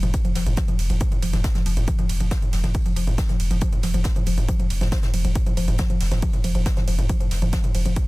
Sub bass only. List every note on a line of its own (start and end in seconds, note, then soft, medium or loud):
0.03 0.14 F1 medium
0.36 0.46 F1 loud
0.47 0.57 F1 medium
0.79 0.89 F1 loud
0.90 1.01 F1 medium
1.23 1.33 F1 loud
1.33 1.44 F1 medium
1.66 1.76 F1 medium
1.77 1.88 F1 medium
2.09 2.20 F1 loud
2.20 2.31 F1 medium
2.53 2.63 F1 loud
2.64 2.74 F1 medium
2.96 3.07 F1 loud
3.07 3.18 F1 medium
3.40 3.50 F1 loud
3.51 3.61 F1 medium
3.83 3.94 F1 loud
3.94 4.05 F1 medium
4.27 4.37 F1 loud
4.38 4.48 F1 medium
4.70 4.81 F1 loud
4.81 4.92 F1 medium
5.14 5.24 F1 loud
5.25 5.35 F1 medium
5.57 5.67 F1 loud
5.68 5.79 F1 medium
6.01 6.11 F1 loud
6.12 6.22 F1 medium
6.44 6.55 F1 loud
6.55 6.66 F1 medium
6.88 6.98 F1 medium
6.99 7.09 F1 medium
7.31 7.42 F1 loud
7.42 7.53 F1 medium
7.75 7.85 F1 loud
7.86 7.96 F1 medium